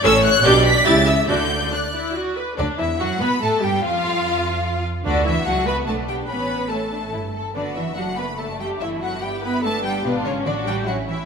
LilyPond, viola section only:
\new Staff \with { instrumentName = "Viola section" } { \time 3/4 \key d \major \tempo 4 = 144 <cis' a'>8 r8 <d' g'>8 r8 <e' g'>8 r8 | <d' fis'>8 r8 d'8 e'8 fis'8 b'8 | d'8 e'8 fis'8 b'8 a'8 g'8 | f'2~ f'8 r8 |
d'8 e'8 fis'8 b'8 a'8 g'8 | b'4 a'4. r8 | d'8 e'8 fis'8 b'8 a'8 g'8 | e'8 fis'8 g'8 b'8 a'8 g'8 |
b8 cis'8 d'8 g'8 fis'8 e'8 | }